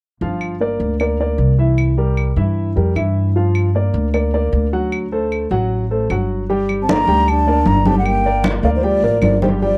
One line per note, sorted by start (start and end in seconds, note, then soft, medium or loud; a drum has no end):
0.21 0.76 G1 medium
0.21 0.54 F3 medium
0.21 0.54 F4 medium
0.21 0.54 F5 medium
0.41 claves medium
0.60 0.93 A#3 medium
0.60 0.93 A#4 medium
0.60 0.93 D5 medium
0.80 1.35 D2 medium
1.00 1.16 A#3 medium
1.00 1.17 A#4 medium
1.00 1.16 D5 medium
1.00 claves medium
1.20 1.52 A#3 medium
1.20 1.52 A#4 medium
1.20 1.52 D5 medium
1.38 2.31 C2 medium
1.58 1.91 E3 medium
1.58 1.91 E4 medium
1.58 1.91 E5 medium
1.78 claves medium
1.98 2.30 G3 medium
1.98 2.30 G4 medium
1.98 2.30 A#4 medium
2.17 claves medium
2.36 2.73 G2 medium
2.36 2.69 E3 medium
2.36 2.69 E4 medium
2.36 2.69 E5 medium
2.76 2.95 F2 medium
2.76 2.92 G3 medium
2.76 2.93 G4 medium
2.76 2.93 A#4 medium
2.95 3.88 G2 medium
2.95 3.28 E3 medium
2.95 3.28 E4 medium
2.95 3.29 E5 medium
2.95 claves medium
3.36 3.68 F3 medium
3.36 3.68 F4 medium
3.36 3.68 F5 medium
3.55 claves medium
3.75 4.07 A#3 medium
3.75 4.07 A#4 medium
3.75 4.07 D5 medium
3.94 4.49 D2 medium
4.14 4.30 A#3 medium
4.14 4.30 A#4 medium
4.14 4.30 D5 medium
4.14 claves medium
4.34 4.66 A#3 medium
4.34 4.66 A#4 medium
4.34 4.66 D5 medium
4.52 5.45 D2 medium
4.73 5.05 F#3 medium
4.73 5.05 F#4 medium
4.73 5.05 F#5 medium
4.92 claves medium
5.12 5.44 A3 medium
5.12 5.44 A4 medium
5.12 5.44 C5 medium
5.32 claves medium
5.51 6.06 A1 medium
5.51 5.83 F#3 medium
5.51 5.83 F#4 medium
5.51 5.84 F#5 medium
5.91 6.07 A3 medium
5.91 6.07 A4 medium
5.91 6.07 C5 medium
6.10 7.02 G1 medium
6.10 6.43 F#3 medium
6.10 6.43 F#4 medium
6.10 6.43 F#5 medium
6.10 claves medium
6.50 6.81 G3 medium
6.50 6.81 G4 medium
6.50 6.82 G5 medium
6.50 high conga soft
6.69 high conga soft
6.69 claves medium
6.82 6.92 C4 medium
6.82 6.93 A5 medium
6.89 7.05 A#3 medium
6.89 7.29 D4 medium
6.89 7.05 A#4 medium
6.89 7.05 D5 medium
6.89 7.31 A#5 loud
6.89 high conga medium
7.07 7.62 D2 medium
7.07 7.40 G3 medium
7.07 7.40 G4 medium
7.07 7.40 G5 medium
7.07 high conga soft
7.28 7.68 D4 medium
7.28 7.69 A5 loud
7.28 high conga soft
7.28 claves medium
7.47 7.79 A#3 medium
7.47 7.79 A#4 medium
7.47 7.79 D5 medium
7.47 high conga soft
7.66 8.58 G1 medium
7.66 7.88 D4 medium
7.66 7.88 A#5 medium
7.66 high conga medium
7.86 8.18 G3 medium
7.86 7.97 C4 medium
7.86 8.18 G4 medium
7.86 8.18 G5 medium
7.86 7.98 A5 medium
7.86 high conga medium
7.98 8.06 A3 medium
7.98 8.07 F#5 medium
8.04 8.44 A#3 medium
8.04 8.45 G5 loud
8.04 high conga soft
8.04 claves medium
8.24 8.57 A#3 medium
8.24 8.58 A#4 medium
8.24 8.58 D5 medium
8.24 high conga soft
8.44 high conga loud
8.44 claves medium
8.62 9.00 D2 medium
8.62 8.68 A3 medium
8.62 8.80 A#3 medium
8.62 8.80 A#4 medium
8.62 8.80 D5 medium
8.62 8.70 F5 medium
8.62 high conga soft
8.76 8.83 D#3 medium
8.76 8.85 C5 medium
8.81 9.21 F3 medium
8.81 8.99 G3 medium
8.81 9.00 G4 medium
8.81 9.22 D5 medium
8.81 9.00 G5 medium
8.81 high conga soft
9.02 9.21 A1 medium
9.02 9.35 A#3 medium
9.02 9.36 A#4 medium
9.02 9.36 D5 medium
9.02 high conga soft
9.21 9.78 G1 medium
9.21 9.40 F3 medium
9.21 9.41 D5 medium
9.21 high conga medium
9.21 claves medium
9.41 9.50 D#3 medium
9.41 9.58 G3 medium
9.41 9.58 G4 medium
9.41 9.48 C5 medium
9.41 9.58 G5 medium
9.41 high conga medium
9.61 9.78 F3 medium
9.61 9.78 G3 medium
9.61 9.78 G4 medium
9.61 9.78 D5 medium
9.61 9.78 G5 medium
9.61 high conga soft